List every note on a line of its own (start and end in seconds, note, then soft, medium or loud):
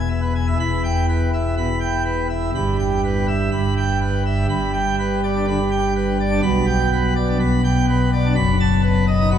0.00 0.54 E1 medium
0.00 0.54 E2 medium
0.09 0.20 E5 medium
0.22 0.33 B4 medium
0.35 0.46 G#5 medium
0.47 0.58 E5 medium
0.59 2.50 E1 medium
0.59 2.50 E2 medium
0.59 0.81 B5 loud
0.84 1.06 G5 medium
1.09 1.30 B4 medium
1.34 1.55 E5 medium
1.57 1.68 B2 medium
1.57 1.79 B5 medium
1.81 2.02 G5 medium
2.05 2.27 B4 medium
2.29 2.50 E5 medium
2.54 3.50 G1 medium
2.54 3.49 G2 medium
2.54 2.76 B5 loud
2.79 3.01 G5 medium
3.04 3.26 B4 medium
3.28 3.50 E5 medium
3.51 4.46 G1 medium
3.51 4.46 G2 medium
3.51 3.74 B5 medium
3.77 3.99 G5 medium
4.02 4.23 B4 medium
4.26 4.46 E5 medium
4.49 6.40 G1 loud
4.49 6.40 G2 medium
4.49 4.71 B5 loud
4.74 4.96 G5 medium
4.99 5.20 B4 medium
5.23 5.45 D5 medium
5.35 5.46 D4 medium
5.48 5.58 D3 medium
5.48 5.69 B5 medium
5.71 5.93 G5 medium
5.96 6.17 B4 medium
6.20 6.41 D5 medium
6.31 6.41 D4 medium
6.42 7.38 B1 loud
6.42 7.38 B2 loud
6.42 6.65 B5 loud
6.67 6.89 G5 medium
6.93 7.14 B4 medium
7.16 7.37 D5 medium
7.28 7.39 D4 medium
7.40 8.33 B1 medium
7.40 8.33 B2 medium
7.40 7.61 B5 medium
7.64 7.86 G5 medium
7.89 8.10 B4 medium
8.13 8.33 D5 medium
8.25 8.35 D4 medium
8.35 9.38 F#1 loud
8.35 9.38 F#2 loud
8.35 8.57 B5 loud
8.60 8.82 A5 medium
8.83 9.05 B4 medium
9.08 9.29 D#5 medium
9.20 9.31 D#4 medium
9.31 9.38 F#3 medium
9.31 9.38 B5 medium